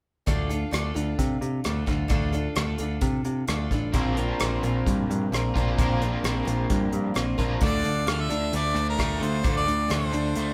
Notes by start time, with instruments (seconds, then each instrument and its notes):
0.26 picked electric bass D2, twelve-string acoustic guitar D3 A3 D4 F4 A4, kick, closed hi-hat
0.49 twelve-string acoustic guitar D4 F4 A4, closed hi-hat
0.71 picked electric bass D2, twelve-string acoustic guitar A3 D4 F4 A4, cross-stick, closed hi-hat
0.94 picked electric bass D2, twelve-string acoustic guitar D4 F4 A4, closed hi-hat
1.19 picked electric bass C3, kick, closed hi-hat
1.41 picked electric bass C3, closed hi-hat
1.64 picked electric bass D2, twelve-string acoustic guitar A3 D4 F4 A4, cross-stick, closed hi-hat
1.86 picked electric bass D2, twelve-string acoustic guitar D4 F4 A4, kick, closed hi-hat
2.08 picked electric bass D2, twelve-string acoustic guitar D3 A3 D4 F4 A4, kick, closed hi-hat
2.32 twelve-string acoustic guitar D4 F4 A4, closed hi-hat
2.55 picked electric bass D2, twelve-string acoustic guitar A3 D4 F4 A4, cross-stick, closed hi-hat
2.78 picked electric bass D2, twelve-string acoustic guitar D4 F4 A4, closed hi-hat
3.01 picked electric bass C3, kick, closed hi-hat
3.25 picked electric bass C3, closed hi-hat
3.47 picked electric bass D2, twelve-string acoustic guitar A3 D4 F4 A4, cross-stick, closed hi-hat
3.71 picked electric bass A1, twelve-string acoustic guitar D4 F4 A4, kick, closed hi-hat
3.93 picked electric bass A#1, overdriven electric guitar A#2 F3 A#3 D4 F4, twelve-string acoustic guitar A#2 D3 A#3 C4 F4 A#4, kick, closed hi-hat
4.17 twelve-string acoustic guitar A#3 C4 F4 A#4, closed hi-hat
4.40 picked electric bass A#1, twelve-string acoustic guitar A#3 C4 F4 A#4, cross-stick, closed hi-hat
4.63 picked electric bass A#1, twelve-string acoustic guitar A#3 C4 F4 A#4, closed hi-hat
4.87 picked electric bass G2, kick, closed hi-hat
5.10 picked electric bass G2, closed hi-hat
5.32 picked electric bass A#1, twelve-string acoustic guitar A#3 C4 F4 A#4, cross-stick, closed hi-hat
5.54 picked electric bass A#1, overdriven electric guitar A#2 F3 A#3 D4 F4, twelve-string acoustic guitar A#3 C4 F4 A#4, kick, closed hi-hat
5.76 picked electric bass A#1, overdriven electric guitar A#2 F3 A#3 D4 F4, twelve-string acoustic guitar A#2 D3 A#3 C4 F4, kick, closed hi-hat
5.80 twelve-string acoustic guitar A#4
6.02 twelve-string acoustic guitar A#3 C4 F4 A#4, closed hi-hat
6.23 picked electric bass A#1, twelve-string acoustic guitar A#3 C4 F4 A#4, cross-stick, closed hi-hat
6.45 picked electric bass A#1, twelve-string acoustic guitar A#3 C4 F4 A#4, closed hi-hat
6.70 picked electric bass G2, kick, closed hi-hat
6.92 picked electric bass G2, closed hi-hat
7.14 picked electric bass A#1, twelve-string acoustic guitar A#3 C4 F4 A#4, cross-stick, closed hi-hat
7.38 picked electric bass A#1, overdriven electric guitar A#2 F3 A#3 D4 F4, twelve-string acoustic guitar A#3 C4 F4 A#4, kick, closed hi-hat
7.61 picked electric bass D2, twelve-string acoustic guitar D3 A3 D4 F4 A4, overdriven electric guitar D3, kick, closed hi-hat
7.65 harmonica D5
7.83 picked electric bass D2, twelve-string acoustic guitar D4 F4 A4, closed hi-hat
8.07 picked electric bass D2, overdriven electric guitar D3, twelve-string acoustic guitar A3 D4 F4 A4, harmonica F5, cross-stick, closed hi-hat
8.21 harmonica E5
8.29 picked electric bass D2, overdriven electric guitar D4, twelve-string acoustic guitar D4 F4 A4, closed hi-hat
8.53 picked electric bass D2, overdriven electric guitar A3, harmonica D5, closed hi-hat
8.75 picked electric bass D2, overdriven electric guitar D4, closed hi-hat
8.89 harmonica A#4
8.97 picked electric bass D2, twelve-string acoustic guitar A3 D4 F4 A4, overdriven electric guitar A3, kick, cross-stick, closed hi-hat
9.20 picked electric bass D2, overdriven electric guitar D3, twelve-string acoustic guitar D4 F4 A4, harmonica C5, closed hi-hat
9.43 picked electric bass D2, twelve-string acoustic guitar D3 A3 D4 F4 A4, overdriven electric guitar D3, kick, closed hi-hat
9.57 harmonica D5
9.66 picked electric bass D2, twelve-string acoustic guitar D4 F4 A4, closed hi-hat
9.88 picked electric bass D2, overdriven electric guitar D3, twelve-string acoustic guitar A3 D4 F4 A4, harmonica C5, cross-stick, closed hi-hat
10.11 picked electric bass D2, overdriven electric guitar D4, twelve-string acoustic guitar D4 F4 A4, closed hi-hat
10.35 picked electric bass D2, overdriven electric guitar A3, closed hi-hat